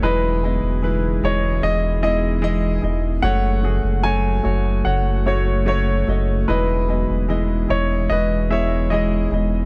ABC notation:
X:1
M:4/4
L:1/16
Q:1/4=74
K:E
V:1 name="Grand piano"
B6 c2 d2 d6 | f4 g4 f2 c2 c4 | B6 c2 d2 e2 d4 |]
V:2 name="Grand piano"
[G,Ed]2 [G,Ed]2 [G,EB]2 [G,Ed]2 [G,Ed]2 [G,Ed]2 [G,Ed]2 [G,Ed]2 | [A,Fc]2 [A,FG]2 [A,Fc]2 [A,Fc]2 [A,Fc]2 [A,Fc]2 [A,Fc]2 [A,Fd]2 | [G,Ed]2 [G,Ed]2 [G,Ed]2 [G,Ed]2 [G,EB]2 [G,Ec]2 [G,Ed]2 [G,Ed]2 |]
V:3 name="Grand piano" clef=bass
E,6 z8 z2 | z16 | E,6 z8 z2 |]
V:4 name="Steel-string acoustic guitar"
[E,B,DG]2 [B,DG]2 [E,B,DG]6 [B,DG]2 [E,B,DG]2 [B,DG]2 | [F,,C,F,A,CF]2 [F,A,CF]2 [F,A,CF]6 [F,A,CF]2 [F,A,CF]2 [F,A,CF]2 | [E,B,DG]2 [B,DG]2 [E,B,DG]6 [B,G]2 [E,B,DG]2 [B,DG]2 |]
V:5 name="Ambient pad" clef=bass
[E,G,B,G]16 | [C,F,A,F]16 | [E,G,B,G]16 |]
V:6 name="Analog synth bass" clef=bass
E,,,3 E,,,3 E,,,2 E,,,6 E,,,2 | F,,,3 F,,,3 F,,,2 F,,,6 F,,,2 | E,,,3 E,,,3 E,,,2 E,,,6 E,,,2 |]